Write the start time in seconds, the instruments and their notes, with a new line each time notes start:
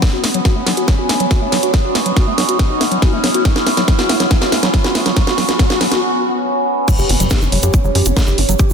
Already playing: synth drone B3, riser
0.02 synth drone C#4, kick, snare, closed hi-hat
0.13 acid bass F#4
0.24 acid bass A3, snare, open hi-hat
0.34 acid bass F#3, closed hi-hat
0.45 acid bass F#4, kick, snare, closed hi-hat
0.56 acid bass A3
0.67 acid bass F#3, snare, open hi-hat
0.77 acid bass F#4, closed hi-hat
0.88 acid bass F#3, kick, snare, closed hi-hat
0.99 acid bass F#4
1.09 acid bass A3, snare, open hi-hat
1.20 acid bass F#3, closed hi-hat
1.31 acid bass F#4, kick, snare, closed hi-hat
1.42 acid bass A3
1.52 acid bass F#3, snare, open hi-hat
1.63 acid bass F#4, closed hi-hat
1.74 acid bass F#3, kick, snare, closed hi-hat
1.84 acid bass F#4
1.95 acid bass A3, snare, open hi-hat
2.06 acid bass F#3, closed hi-hat
2.17 acid bass F#4, kick, snare, closed hi-hat
2.27 acid bass A3
2.38 acid bass F#3, snare, open hi-hat
2.49 acid bass F#4, closed hi-hat
2.59 acid bass F#3, kick, snare, closed hi-hat
2.70 acid bass F#4
2.81 acid bass A3, snare, open hi-hat
2.92 acid bass F#3, closed hi-hat
3.02 acid bass F#4, kick, snare, closed hi-hat
3.13 acid bass A3
3.24 acid bass F#3, snare, open hi-hat
3.34 acid bass F#4, closed hi-hat
3.45 acid bass F#3, kick, snare, closed hi-hat
3.56 acid bass F#4, snare
3.67 acid bass A3, snare, open hi-hat
3.77 acid bass F#3, snare, closed hi-hat
3.88 acid bass F#3, kick, snare, closed hi-hat
3.99 acid bass F#4, snare
4.09 acid bass A3, snare, open hi-hat
4.20 acid bass F#3, snare, closed hi-hat
4.31 acid bass F#3, kick, snare, closed hi-hat
4.42 acid bass F#4, snare
4.52 acid bass A3, snare, open hi-hat
4.63 acid bass F#3, snare, closed hi-hat
4.74 acid bass F#3, kick, snare, closed hi-hat
4.84 acid bass F#4, snare
4.95 acid bass A3, snare, open hi-hat
5.06 acid bass F#3, snare, closed hi-hat
5.17 acid bass F#3, kick, snare, closed hi-hat
5.27 acid bass F#4, snare
5.38 acid bass F#3, snare, open hi-hat
5.49 acid bass F#4, snare, closed hi-hat
5.59 acid bass F#3, kick, snare, closed hi-hat
5.70 acid bass F#4, snare
5.81 acid bass F#3, snare, open hi-hat
5.92 acid bass F#4, snare, closed hi-hat
6.88 acid bass F#3, synth drone C#4 C#5, kick, closed hi-hat, crash, impact, shaker
6.98 analog synth bass F#1, acid bass G4, shaker
7.09 analog synth bass F#1, acid bass A3, open hi-hat
7.20 analog synth bass F#1, acid bass F#3, closed hi-hat, shaker
7.30 acid bass G4, kick, snare, closed hi-hat, shaker
7.42 analog synth bass F#1, acid bass A3, shaker
7.52 analog synth bass F#1, acid bass F#3, open hi-hat
7.63 analog synth bass F#2, acid bass G4, closed hi-hat, shaker
7.74 acid bass A3, kick, closed hi-hat, shaker
7.84 analog synth bass F#1, acid bass F#3, shaker
7.95 analog synth bass F#2, acid bass G4, open hi-hat
8.05 analog synth bass F#1, acid bass A3, closed hi-hat, shaker
8.17 acid bass F#3, kick, snare, closed hi-hat, shaker
8.27 analog synth bass G1, acid bass G4, shaker
8.38 analog synth bass G1, acid bass A3, open hi-hat
8.49 analog synth bass G1, acid bass F#3, closed hi-hat, shaker
8.59 acid bass G4, kick, closed hi-hat, shaker
8.70 analog synth bass F#1, acid bass A3, shaker